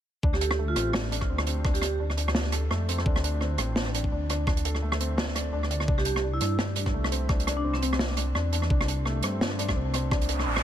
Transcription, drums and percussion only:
0.23 kick loud
0.34 cross-stick soft
0.41 closed hi-hat medium
0.51 cross-stick medium
0.76 cross-stick medium
0.76 closed hi-hat medium
0.93 cross-stick medium
0.93 snare loud
1.12 closed hi-hat medium
1.21 kick medium
1.21 cross-stick soft
1.38 cross-stick medium
1.47 closed hi-hat medium
1.65 kick loud
1.65 cross-stick medium
1.75 closed hi-hat medium
1.82 cross-stick medium
1.82 closed hi-hat medium
2.10 cross-stick soft
2.17 closed hi-hat medium
2.28 cross-stick medium
2.35 snare loud
2.52 cross-stick medium
2.52 closed hi-hat medium
2.71 cross-stick medium
2.89 closed hi-hat medium
2.98 cross-stick medium
3.06 kick loud
3.16 cross-stick medium
3.24 closed hi-hat medium
3.41 cross-stick soft
3.58 cross-stick medium
3.58 closed hi-hat medium
3.76 snare loud
3.86 cross-stick medium
3.94 closed hi-hat medium
4.04 kick medium
4.30 cross-stick medium
4.30 closed hi-hat medium
4.47 kick loud
4.47 cross-stick medium
4.57 closed hi-hat medium
4.65 closed hi-hat medium
4.75 cross-stick soft
4.92 cross-stick medium
5.00 closed hi-hat medium
5.18 cross-stick soft
5.18 snare loud
5.36 cross-stick medium
5.36 closed hi-hat medium
5.63 cross-stick soft
5.71 closed hi-hat medium
5.80 cross-stick medium
5.88 kick loud
5.98 cross-stick soft
6.05 closed hi-hat medium
6.16 cross-stick medium
6.41 cross-stick soft
6.41 closed hi-hat medium
6.59 cross-stick medium
6.59 snare loud
6.76 closed hi-hat medium
6.86 kick medium
6.86 cross-stick soft
7.04 cross-stick medium
7.12 closed hi-hat medium
7.29 kick loud
7.29 cross-stick medium
7.40 closed hi-hat soft
7.47 cross-stick medium
7.47 closed hi-hat medium
7.74 cross-stick soft
7.82 closed hi-hat medium
7.93 cross-stick medium
7.99 snare loud
8.17 cross-stick medium
8.17 closed hi-hat medium
8.35 cross-stick medium
8.53 closed hi-hat medium
8.62 cross-stick medium
8.70 kick loud
8.81 cross-stick medium
8.88 closed hi-hat medium
9.05 cross-stick medium
9.23 cross-stick medium
9.23 closed hi-hat medium
9.41 snare loud
9.51 cross-stick soft
9.59 closed hi-hat medium
9.69 kick medium
9.69 cross-stick medium
9.94 cross-stick soft
9.94 closed hi-hat medium
10.11 kick loud
10.11 cross-stick medium
10.21 closed hi-hat medium
10.29 closed hi-hat medium
10.39 cross-stick medium
10.56 cross-stick medium

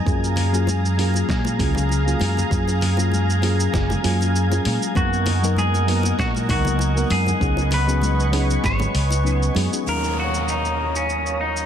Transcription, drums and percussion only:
0.06 kick loud
0.06 shaker medium
0.24 shaker soft
0.36 open hi-hat medium
0.36 high bongo soft
0.36 low conga medium
0.54 shaker medium
0.67 high bongo medium
0.67 high conga medium
0.67 shaker medium
0.85 shaker soft
0.99 open hi-hat medium
1.14 high bongo medium
1.14 shaker medium
1.29 kick loud
1.29 snare medium
1.29 shaker medium
1.44 high bongo medium
1.44 high conga medium
1.44 shaker soft
1.59 kick loud
1.59 open hi-hat medium
1.75 low conga medium
1.75 shaker medium
1.89 high bongo soft
1.89 shaker medium
2.08 shaker soft
2.20 open hi-hat medium
2.20 high bongo medium
2.20 high conga medium
2.37 low conga medium
2.37 shaker medium
2.51 kick loud
2.51 shaker medium
2.68 high bongo soft
2.68 shaker soft
2.81 open hi-hat medium
2.81 low conga medium
2.97 high bongo medium
2.97 shaker medium
3.12 high conga medium
3.12 shaker medium
3.30 shaker soft
3.42 open hi-hat medium
3.42 high bongo soft
3.60 shaker medium
3.74 kick loud
3.74 snare medium
3.74 high bongo medium
3.74 shaker soft
3.90 high conga medium
3.90 low conga medium
3.90 shaker soft
4.04 open hi-hat medium
4.21 high bongo medium
4.21 shaker medium
4.36 shaker medium
4.52 high bongo medium
4.52 shaker soft
4.65 open hi-hat medium
4.65 high conga medium
4.82 shaker medium
4.95 kick loud
4.95 high bongo medium
4.95 shaker medium
5.13 shaker soft
5.26 open hi-hat loud
5.26 high bongo medium
5.26 low conga medium
5.44 shaker medium
5.56 high conga medium
5.56 shaker medium
5.74 high bongo medium
5.74 shaker soft
5.88 open hi-hat medium
6.03 high bongo medium
6.03 shaker medium
6.19 kick loud
6.19 snare medium
6.19 shaker medium
6.35 high conga medium
6.35 shaker soft
6.49 kick loud
6.49 open hi-hat medium
6.49 high bongo medium
6.65 low conga medium
6.65 shaker medium
6.79 high bongo medium
6.79 shaker medium
6.97 shaker soft
7.10 open hi-hat medium
7.10 high conga medium
7.26 high bongo medium
7.26 low conga medium
7.26 shaker medium
7.41 kick loud
7.41 shaker medium
7.57 high bongo medium
7.57 shaker soft
7.71 open hi-hat medium
7.71 low conga medium
7.89 shaker medium
8.01 high bongo medium
8.01 high conga loud
8.01 shaker medium
8.20 shaker soft
8.33 open hi-hat medium
8.33 high bongo medium
8.50 shaker medium
8.64 kick loud
8.64 snare medium
8.64 shaker medium
8.79 high bongo medium
8.79 high conga medium
8.79 low conga loud
8.79 shaker soft
8.95 open hi-hat medium
9.10 high bongo medium
9.10 shaker medium
9.26 shaker medium
9.43 shaker soft
9.55 open hi-hat loud
9.55 high bongo soft
9.55 high conga medium
9.73 shaker medium
9.87 shaker soft
10.04 shaker soft
10.34 shaker medium
10.48 shaker soft
10.65 shaker soft
10.96 shaker medium
11.09 shaker soft
11.26 shaker soft
11.57 shaker medium

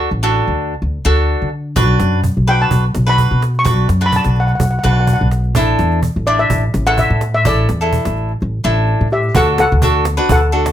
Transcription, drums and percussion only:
1.76 cajon bass medium
2.00 cajon slap medium
2.12 cajon slap soft
2.24 cajon bass medium
2.47 cajon slap soft
2.59 cajon slap soft
2.71 cajon bass medium
2.95 cajon slap medium
3.18 cajon bass medium
3.42 cajon slap medium
3.54 cajon slap soft
3.65 cajon bass loud
3.89 cajon slap medium
4.01 cajon slap soft
4.12 cajon bass medium
4.24 cajon slap medium
4.35 cajon slap soft
4.48 cajon slap soft
4.60 cajon bass medium
4.83 cajon slap medium
5.07 cajon bass medium
5.31 cajon slap medium
5.44 cajon slap soft
5.55 cajon bass loud
5.79 cajon slap medium
5.92 cajon slap soft
6.03 cajon bass medium
6.26 cajon slap soft
6.39 cajon slap soft
6.50 cajon bass medium
6.74 cajon slap medium
6.97 cajon bass medium
7.21 cajon slap medium
7.34 cajon slap soft
7.45 cajon bass loud
7.69 cajon slap medium
7.93 cajon bass medium
8.05 cajon slap medium
8.17 cajon slap soft
8.29 cajon slap soft
8.41 cajon slap soft
8.64 cajon slap soft
8.77 cajon slap soft
8.87 cajon slap soft
9.10 cajon slap soft
9.23 cajon slap soft
9.35 cajon bass loud
9.58 cajon slap medium
9.82 cajon bass medium
10.05 cajon slap medium
10.29 cajon bass loud
10.53 cajon slap soft
10.66 cajon slap medium

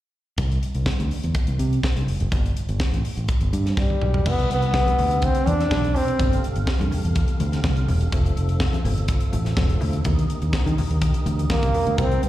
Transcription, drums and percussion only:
0.38 kick loud
0.38 closed hi-hat medium
0.51 closed hi-hat soft
0.63 closed hi-hat medium
0.75 closed hi-hat soft
0.86 kick loud
0.86 snare loud
1.00 closed hi-hat soft
1.11 open hi-hat medium
1.23 closed hi-hat soft
1.35 kick loud
1.35 closed hi-hat medium
1.47 closed hi-hat soft
1.59 closed hi-hat medium
1.73 closed hi-hat soft
1.83 kick loud
1.83 snare loud
1.97 closed hi-hat soft
2.08 open hi-hat medium
2.20 closed hi-hat soft
2.32 kick loud
2.32 closed hi-hat medium
2.46 closed hi-hat soft
2.57 closed hi-hat medium
2.69 closed hi-hat soft
2.80 kick loud
2.80 snare loud
2.94 closed hi-hat soft
3.05 open hi-hat medium
3.17 closed hi-hat soft
3.28 kick loud
3.28 closed hi-hat medium
3.41 closed hi-hat soft
3.53 closed hi-hat medium
3.66 snare soft
3.66 closed hi-hat soft
3.77 kick loud
3.77 snare medium
3.90 high tom medium
4.02 mid tom medium
4.14 floor tom medium
4.26 kick loud
4.26 crash loud
4.26 low conga medium
4.39 closed hi-hat soft
4.39 muted conga soft
4.51 closed hi-hat medium
4.62 closed hi-hat soft
4.74 kick loud
4.74 snare loud
4.87 closed hi-hat soft
4.87 high conga medium
4.99 open hi-hat medium
4.99 low conga medium
5.11 closed hi-hat soft
5.22 kick medium
5.22 closed hi-hat medium
5.22 muted conga soft
5.35 closed hi-hat medium
5.46 closed hi-hat medium
5.46 high conga medium
5.60 snare soft
5.60 closed hi-hat soft
5.60 high conga medium
5.71 kick loud
5.71 snare loud
5.71 muted conga soft
5.71 high conga medium
5.83 closed hi-hat soft
5.83 muted conga soft
5.95 open hi-hat medium
5.95 low conga medium
6.08 closed hi-hat soft
6.19 kick loud
6.19 closed hi-hat medium
6.19 muted conga soft
6.19 low conga medium
6.32 closed hi-hat soft
6.32 muted conga soft
6.44 closed hi-hat medium
6.56 closed hi-hat soft
6.67 kick loud
6.67 snare loud
6.67 muted conga soft
6.79 closed hi-hat soft
6.79 muted conga soft
6.79 high conga medium
6.92 open hi-hat medium
6.92 low conga medium
7.05 closed hi-hat soft
7.15 kick loud
7.15 closed hi-hat medium
7.15 muted conga soft
7.28 closed hi-hat soft
7.40 closed hi-hat medium
7.40 high conga medium
7.52 snare soft
7.52 closed hi-hat soft
7.52 high conga soft
7.64 kick loud
7.64 snare loud
7.64 high conga medium
7.77 closed hi-hat soft
7.88 open hi-hat medium
7.88 low conga medium
8.01 closed hi-hat soft
8.12 kick loud
8.12 closed hi-hat medium
8.12 muted conga soft
8.12 low conga medium
8.25 closed hi-hat soft
8.25 muted conga soft
8.37 closed hi-hat medium
8.49 closed hi-hat soft
8.60 kick loud
8.60 snare loud
8.60 muted conga soft
8.73 closed hi-hat soft
8.73 muted conga soft
8.73 high conga medium
8.85 open hi-hat medium
8.85 low conga medium
8.97 closed hi-hat soft
9.08 kick loud
9.08 closed hi-hat medium
9.08 muted conga soft
9.20 closed hi-hat medium
9.33 closed hi-hat medium
9.33 high conga medium
9.45 snare soft
9.45 closed hi-hat soft
9.45 high conga medium
9.57 kick loud
9.57 snare loud
9.57 muted conga soft
9.57 high conga medium
9.69 closed hi-hat soft
9.69 muted conga soft
9.81 open hi-hat medium
9.81 low conga medium
9.93 closed hi-hat soft
10.05 kick loud
10.05 closed hi-hat medium
10.05 muted conga soft
10.05 low conga medium
10.19 closed hi-hat soft
10.30 closed hi-hat medium
10.42 closed hi-hat soft
10.53 kick loud
10.53 snare loud
10.53 muted conga soft
10.66 closed hi-hat soft
10.66 high conga medium
10.78 open hi-hat medium
10.78 low conga medium
10.91 closed hi-hat soft
11.01 kick loud
11.01 closed hi-hat medium
11.14 closed hi-hat soft
11.14 muted conga soft
11.26 closed hi-hat medium
11.26 high conga medium
11.39 closed hi-hat soft
11.39 high conga medium
11.50 kick loud
11.50 snare loud
11.50 high conga medium
11.63 kick medium
11.63 closed hi-hat soft
11.74 open hi-hat medium
11.74 low conga medium
11.87 closed hi-hat soft
11.98 kick loud
11.98 closed hi-hat medium
11.98 low conga medium
12.12 closed hi-hat soft
12.12 muted conga soft
12.23 closed hi-hat medium

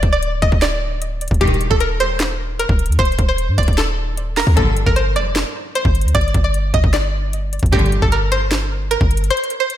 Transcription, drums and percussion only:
0.03 kick loud
0.03 closed hi-hat medium
0.23 closed hi-hat medium
0.42 kick loud
0.42 closed hi-hat medium
0.52 kick loud
0.62 snare loud
0.62 clap medium
0.62 closed hi-hat medium
1.02 closed hi-hat medium
1.21 closed hi-hat medium
1.28 kick medium
1.28 closed hi-hat medium
1.34 closed hi-hat medium
1.41 kick loud
1.41 closed hi-hat medium
1.48 closed hi-hat medium
1.54 closed hi-hat soft
1.61 closed hi-hat medium
1.71 kick loud
1.80 closed hi-hat medium
2.00 closed hi-hat medium
2.20 snare loud
2.20 clap medium
2.20 closed hi-hat medium
2.60 closed hi-hat medium
2.69 kick loud
2.79 closed hi-hat medium
2.86 closed hi-hat medium
2.92 closed hi-hat medium
2.99 kick loud
2.99 closed hi-hat medium
3.05 closed hi-hat medium
3.12 closed hi-hat soft
3.19 kick loud
3.19 closed hi-hat medium
3.38 closed hi-hat medium
3.58 kick loud
3.58 closed hi-hat medium
3.63 closed hi-hat medium
3.68 kick loud
3.68 closed hi-hat medium
3.73 closed hi-hat soft
3.78 snare loud
3.78 clap medium
3.78 closed hi-hat medium
4.17 closed hi-hat medium
4.37 snare loud
4.37 clap medium
4.37 open hi-hat medium
4.47 kick medium
4.57 kick loud
4.57 closed hi-hat medium
4.77 closed hi-hat medium
4.86 kick medium
4.96 closed hi-hat medium
5.16 closed hi-hat medium
5.36 snare loud
5.36 clap medium
5.36 closed hi-hat medium
5.75 closed hi-hat medium
5.85 kick loud
5.95 closed hi-hat medium
6.01 closed hi-hat medium
6.08 closed hi-hat medium
6.15 kick loud
6.15 closed hi-hat medium
6.21 closed hi-hat medium
6.28 closed hi-hat soft
6.34 kick loud
6.34 closed hi-hat medium
6.54 closed hi-hat medium
6.74 kick loud
6.74 closed hi-hat medium
6.84 kick loud
6.94 snare loud
6.94 clap medium
6.94 closed hi-hat medium
7.33 closed hi-hat medium
7.53 closed hi-hat medium
7.59 kick medium
7.59 closed hi-hat medium
7.66 closed hi-hat medium
7.72 kick loud
7.72 closed hi-hat medium
7.79 closed hi-hat medium
7.86 closed hi-hat soft
7.92 closed hi-hat medium
8.02 kick loud
8.12 closed hi-hat medium
8.32 closed hi-hat medium
8.51 snare loud
8.51 clap medium
8.51 closed hi-hat medium
8.91 closed hi-hat medium
9.01 kick loud
9.11 closed hi-hat medium
9.17 closed hi-hat medium
9.24 closed hi-hat medium
9.30 closed hi-hat medium
9.37 closed hi-hat medium
9.44 closed hi-hat soft
9.50 closed hi-hat medium
9.70 closed hi-hat medium

